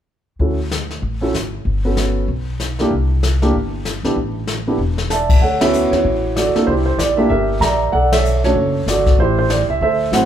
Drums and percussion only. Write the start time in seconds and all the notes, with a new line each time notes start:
0.40 brush sweep, kick
0.71 snare, hi-hat pedal
0.91 snare
1.03 brush sweep, kick
1.34 snare, hi-hat pedal
1.65 brush sweep, kick
1.97 snare, hi-hat pedal
2.28 brush sweep, kick
2.60 snare, hi-hat pedal
2.79 snare
2.91 brush sweep, kick
3.23 snare, hi-hat pedal
3.42 snare
3.54 brush sweep, kick
3.85 snare, hi-hat pedal
4.04 snare
4.16 brush sweep, kick
4.47 snare, hi-hat pedal
4.98 snare
5.10 snare, hi-hat pedal
5.30 kick, crash
5.42 brush sweep, kick
5.61 snare, ride
5.74 hi-hat pedal
5.93 snare
6.05 brush sweep, kick
6.37 snare, hi-hat pedal
6.56 snare
6.68 brush sweep, kick
6.99 snare, hi-hat pedal
7.30 brush sweep, kick
7.62 snare, hi-hat pedal
7.93 brush sweep, kick
8.12 snare, ride
8.25 hi-hat pedal
8.44 snare
8.56 brush sweep, kick
8.88 snare, hi-hat pedal
9.06 kick, snare
9.19 brush sweep, kick
9.50 snare, hi-hat pedal
9.81 brush sweep, kick
10.13 snare, hi-hat pedal